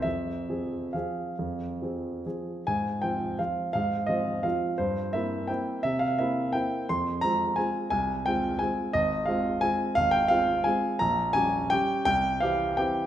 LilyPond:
\new Staff \with { instrumentName = "Grand piano" } { \time 3/4 \key f \minor \tempo 4 = 171 << { e''2 f''4~ | f''2 r4 | aes''4 g''4 f''4 | f''4 ees''4 f''4 |
c''4 e''4 g''4 | e''8 f''8 e''4 g''4 | c'''4 bes''4 aes''4 | aes''4 g''4 aes''4 |
ees''4 f''4 aes''4 | f''8 g''8 f''4 aes''4 | bes''4 aes''4 g''4 | g''4 f''4 g''4 | } \\ { f,4 <f c' aes'>4 <f c' aes'>4 | f,4 <f c' aes'>4 <f c' aes'>4 | aes,4 <f c' f'>4 <f c' f'>4 | aes,4 <f c' f'>4 <f c' f'>4 |
g,4 <bes c' e'>4 <bes c' e'>4 | c4 <bes c' e'>4 <bes c' e'>4 | f,4 <aes c' f'>4 <aes c' f'>4 | c,4 <aes c' f'>4 <aes c' f'>4 |
aes,,4 <aes c' f'>4 <aes c' f'>4 | aes,,4 <aes c' f'>4 <aes c' f'>4 | bes,,4 <g des' g'>4 <g des' g'>4 | c,4 <e c' g'>4 <e c' g'>4 | } >> }